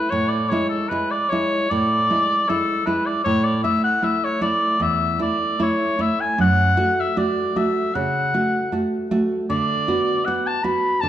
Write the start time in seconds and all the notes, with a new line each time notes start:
Already playing: B4
0.10 A2 C#5
0.28 D5
0.49 G#3 E4 C#5
0.69 A4
0.89 G#3 E4 B4
1.11 D5
1.29 G#3 E4 C#5
1.70 A2 D5
2.10 G#3 E4
2.49 G#3 E4 A4
2.86 G#3 E4 B4
3.06 D5
3.24 A2 C#5
3.44 D5
3.63 A3 E4 E5
3.84 F#5
4.02 A3 E4 E5
4.24 C#5
4.41 A3 E4 D5
4.80 E2 E5
5.19 A3 E4 D5
5.59 A3 E4 C#5
5.99 A3 E4 E5
6.20 G#5
6.38 F#2 F#5
6.77 A3 F#4
7.00 E5
7.17 A3 F#4 D5
7.56 A3 F#4 E5
7.94 C#3 F#5
8.34 A3 F#4
8.72 A3 F#4
9.11 A3 F#4
9.50 D3 D5
9.88 B3 F#4
10.25 B3 F#4 F#5
10.47 A5
10.63 B3 F#4 B5
11.01 D3 A5